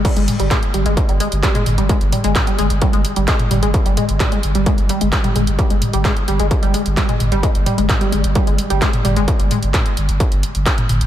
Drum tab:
CC |x---------------|----------------|----------------|----------------|
HH |xxoxxxoxxxoxxxox|xxoxxxoxxxoxxxox|xxoxxxoxxxoxxxox|xxoxxxoxxxoxxxox|
CP |----x-------x---|----x-------x---|----x-------x---|----x-------x---|
T2 |--o-o--------oo-|--o-o--------oo-|--o-o--------oo-|--o-o--------oo-|
BD |o---o---o---o---|o---o---o---o---|o---o---o---o---|o---o---o---o---|

CC |----------------|----------------|
HH |xxoxxxoxxxoxxxox|xxoxxxoxxxoxxxox|
CP |----x-------x---|----x-------x---|
T2 |--o-o--------oo-|--o-o--------oo-|
BD |o---o---o---o---|o---o---o---o---|